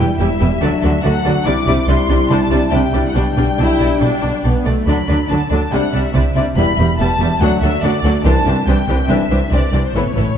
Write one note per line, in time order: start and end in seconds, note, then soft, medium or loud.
0.00 0.17 G3 soft
0.00 0.18 E4 soft
0.00 0.18 G5 medium
0.19 0.28 E1 medium
0.19 0.28 E2 medium
0.19 0.60 G3 soft
0.19 0.28 G3 soft
0.19 0.60 E4 soft
0.19 0.28 E4 soft
0.19 0.28 G4 soft
0.19 0.28 B4 soft
0.19 1.02 E5 medium
0.40 0.49 E1 soft
0.40 0.49 E2 soft
0.40 0.48 G3 soft
0.40 0.48 E4 soft
0.40 0.48 G4 soft
0.40 0.48 B4 soft
0.60 0.71 D2 soft
0.60 0.71 D3 medium
0.60 1.01 F#3 soft
0.60 0.70 F#3 medium
0.60 1.01 D4 medium
0.60 0.70 F#4 medium
0.60 0.69 A4 soft
0.60 0.69 D5 soft
0.83 0.92 D2 medium
0.83 0.92 D3 medium
0.83 0.92 F#3 soft
0.83 0.92 F#4 soft
0.83 0.91 A4 soft
0.83 0.91 D5 soft
1.02 1.13 D2 medium
1.02 1.12 D3 medium
1.02 1.44 F#3 medium
1.02 1.12 F#3 soft
1.02 1.44 D4 soft
1.02 1.13 F#4 soft
1.02 1.11 A4 soft
1.02 1.11 D5 soft
1.02 1.46 F#5 medium
1.25 1.34 D2 soft
1.25 1.33 D3 medium
1.25 1.33 F#3 medium
1.25 1.34 F#4 soft
1.25 1.33 A4 medium
1.25 1.33 D5 medium
1.45 1.54 C2 medium
1.45 1.55 C3 medium
1.45 1.86 G3 medium
1.45 1.55 G3 medium
1.45 1.54 D4 medium
1.45 1.86 E4 medium
1.45 1.54 E4 medium
1.45 1.55 D5 medium
1.45 1.88 D6 medium
1.67 1.75 C2 medium
1.67 1.76 C3 medium
1.67 1.76 G3 medium
1.67 1.75 D4 soft
1.67 1.75 E4 medium
1.67 1.75 D5 soft
1.87 1.96 C2 medium
1.87 1.97 C3 medium
1.87 2.71 G3 medium
1.87 1.97 G3 medium
1.87 1.97 D4 medium
1.87 2.71 E4 medium
1.87 1.97 E4 soft
1.87 1.96 D5 medium
1.87 2.30 C6 medium
2.09 2.17 C2 medium
2.09 2.18 C3 medium
2.09 2.18 G3 soft
2.09 2.18 D4 medium
2.09 2.17 E4 soft
2.09 2.17 D5 soft
2.30 2.38 C2 medium
2.30 2.39 C3 medium
2.30 2.39 G3 medium
2.30 2.39 D4 medium
2.30 2.38 E4 medium
2.30 2.38 D5 medium
2.30 2.73 A5 medium
2.51 2.59 C2 medium
2.51 2.59 C3 medium
2.51 2.60 G3 soft
2.51 2.60 D4 soft
2.51 2.60 E4 soft
2.51 2.59 D5 soft
2.72 2.80 C2 medium
2.72 2.80 C3 medium
2.72 3.15 G3 medium
2.72 2.81 G3 soft
2.72 2.81 D4 soft
2.72 2.80 E4 medium
2.72 3.15 E4 medium
2.72 2.80 D5 medium
2.72 3.05 G5 medium
2.93 3.02 C2 soft
2.93 3.01 C3 medium
2.93 3.03 G3 soft
2.93 3.02 D4 soft
2.93 3.01 E4 soft
2.93 3.02 D5 soft
3.07 3.17 F#5 medium
3.15 3.24 B1 medium
3.15 3.23 B2 medium
3.15 3.23 G3 medium
3.15 4.63 G3 medium
3.15 3.23 D4 medium
3.15 3.24 D4 medium
3.15 4.62 D4 medium
3.15 3.23 D5 soft
3.15 4.44 G5 medium
3.37 3.46 B1 medium
3.37 3.45 B2 soft
3.37 3.46 G3 soft
3.37 3.45 D4 soft
3.37 3.45 D5 soft
3.58 3.67 B1 soft
3.58 3.67 B2 medium
3.58 3.66 D4 soft
3.58 3.98 E4 medium
3.58 3.66 D5 soft
3.79 3.88 B1 medium
3.79 3.88 B2 soft
3.79 3.87 D4 soft
3.79 3.88 D5 soft
4.01 4.10 B1 soft
4.01 4.10 B2 medium
4.01 4.09 D4 soft
4.01 4.44 D4 medium
4.01 4.09 D5 soft
4.22 4.31 B1 soft
4.22 4.31 B2 soft
4.22 4.30 D4 soft
4.22 4.30 D5 soft
4.44 4.53 B1 soft
4.44 4.52 B2 soft
4.44 4.65 B3 medium
4.44 4.52 D4 soft
4.44 4.52 D5 soft
4.65 4.74 B1 soft
4.65 4.74 B2 soft
4.65 4.87 A3 soft
4.65 4.73 D4 soft
4.65 4.73 D5 soft
4.86 4.94 D2 soft
4.86 4.96 D3 soft
4.86 5.02 F#3 soft
4.86 4.96 F#3 soft
4.86 5.02 D4 soft
4.86 4.96 D4 soft
4.86 4.96 D4 medium
4.86 4.96 D5 soft
4.86 5.26 B5 medium
5.08 5.16 D2 soft
5.08 5.17 D3 soft
5.08 5.17 F#3 soft
5.08 5.16 D4 soft
5.08 5.17 D4 soft
5.08 5.16 D5 soft
5.29 5.38 D2 soft
5.29 5.39 D3 soft
5.29 5.39 F#3 soft
5.29 5.37 D4 soft
5.29 5.39 D4 soft
5.29 5.37 D5 soft
5.29 5.72 A5 medium
5.50 5.59 D2 medium
5.50 5.60 D3 medium
5.50 5.60 F#3 soft
5.50 5.58 D4 soft
5.50 5.60 D4 soft
5.50 5.58 D5 soft
5.71 5.80 C2 soft
5.71 5.81 C3 medium
5.71 5.87 G3 soft
5.71 5.82 G3 medium
5.71 5.87 D4 medium
5.71 5.82 D4 medium
5.71 5.79 E4 soft
5.71 5.80 D5 soft
5.71 5.93 F#5 medium
5.93 6.02 C2 soft
5.93 6.01 C3 soft
5.93 6.03 G3 soft
5.93 6.03 D4 soft
5.93 6.01 E4 soft
5.93 6.01 D5 soft
5.93 6.36 E5 medium
6.14 6.23 C2 medium
6.14 6.22 C3 medium
6.14 6.24 G3 soft
6.14 6.24 D4 soft
6.14 6.23 E4 medium
6.14 6.23 D5 medium
6.36 6.44 C2 soft
6.36 6.44 C3 medium
6.36 6.46 G3 soft
6.36 6.46 D4 soft
6.36 6.44 E4 soft
6.36 6.44 D5 medium
6.36 6.44 D5 soft
6.56 6.64 E1 medium
6.56 6.64 E2 medium
6.56 6.72 G3 medium
6.56 6.67 G3 medium
6.56 6.66 B3 medium
6.56 6.72 E4 medium
6.56 6.66 E4 medium
6.56 6.66 E5 medium
6.56 6.98 B5 medium
6.78 6.86 E1 medium
6.78 6.87 E2 medium
6.78 6.87 G3 medium
6.78 6.87 B3 soft
6.78 6.87 E4 soft
6.78 6.86 E5 soft
6.99 7.07 E1 medium
6.99 7.07 E2 medium
6.99 7.09 G3 medium
6.99 7.09 B3 medium
6.99 7.08 E4 medium
6.99 7.08 E5 medium
6.99 7.40 A5 medium
7.19 7.27 E1 medium
7.19 7.29 E2 medium
7.19 7.30 G3 medium
7.19 7.29 B3 medium
7.19 7.29 E4 soft
7.19 7.29 E5 medium
7.40 7.48 D2 medium
7.40 7.49 D2 medium
7.40 7.56 F#3 medium
7.40 7.50 F#3 medium
7.40 7.56 D4 medium
7.40 7.50 D4 medium
7.40 7.50 F#4 medium
7.40 7.49 A4 medium
7.40 7.62 F#5 medium
7.61 7.70 D2 medium
7.61 7.72 F#3 medium
7.61 7.72 D4 medium
7.61 7.71 F#4 soft
7.61 7.71 A4 medium
7.61 7.82 E5 medium
7.82 7.90 D2 medium
7.82 7.91 D2 medium
7.82 7.92 F#3 medium
7.82 7.92 D4 medium
7.82 7.92 F#4 medium
7.82 7.92 A4 medium
7.82 8.25 D5 medium
8.03 8.11 D2 medium
8.03 8.13 D2 medium
8.03 8.13 F#3 medium
8.03 8.13 D4 medium
8.03 8.13 F#4 medium
8.03 8.13 A4 medium
8.24 8.32 C2 medium
8.24 8.33 C2 medium
8.24 8.40 E3 medium
8.24 8.34 E3 medium
8.24 8.33 D4 medium
8.24 8.40 D4 medium
8.24 8.33 G4 medium
8.24 8.34 C5 medium
8.24 8.66 A5 loud
8.46 8.54 C2 medium
8.46 8.55 E3 medium
8.46 8.54 D4 medium
8.46 8.55 G4 soft
8.46 8.55 C5 medium
8.67 8.75 C2 medium
8.67 8.76 C2 medium
8.67 8.76 E3 medium
8.67 8.76 D4 medium
8.67 8.75 G4 medium
8.67 8.76 C5 medium
8.67 9.10 G5 medium
8.88 8.96 C2 medium
8.88 8.97 C2 medium
8.88 8.97 E3 medium
8.88 8.97 D4 medium
8.88 8.97 G4 soft
8.88 8.97 C5 medium
9.09 9.17 C2 medium
9.09 9.18 C2 medium
9.09 9.18 E3 medium
9.09 9.25 E3 medium
9.09 9.18 D4 medium
9.09 9.25 D4 medium
9.09 9.17 G4 medium
9.09 9.17 C5 medium
9.09 9.52 E5 medium
9.31 9.39 C2 medium
9.31 9.39 E3 soft
9.31 9.39 D4 soft
9.31 9.39 G4 medium
9.31 9.39 C5 soft
9.51 9.60 C2 medium
9.51 9.60 E3 soft
9.51 9.61 D4 soft
9.51 9.61 G4 soft
9.51 9.60 C5 medium
9.51 9.84 D5 medium
9.73 9.81 C2 soft
9.73 9.82 C2 soft
9.73 9.81 E3 soft
9.73 9.81 D4 soft
9.73 9.82 G4 soft
9.73 9.82 C5 soft
9.86 9.96 C5 medium
9.95 10.03 A1 soft
9.95 10.03 A2 soft
9.95 10.02 A2 soft
9.95 10.10 E3 soft
9.95 10.03 E3 soft
9.95 10.10 B3 soft
9.95 10.04 E4 soft
9.95 10.04 A4 soft
9.95 10.04 B4 soft
9.95 10.38 C#5 medium
10.03 10.10 A2 soft
10.11 10.18 A2 soft
10.16 10.24 A1 soft
10.16 10.24 A2 soft
10.16 10.26 A2 soft
10.16 10.24 E3 soft
10.16 10.24 E4 soft
10.16 10.25 A4 soft
10.16 10.25 B4 soft
10.27 10.33 A2 soft
10.34 10.38 A2 soft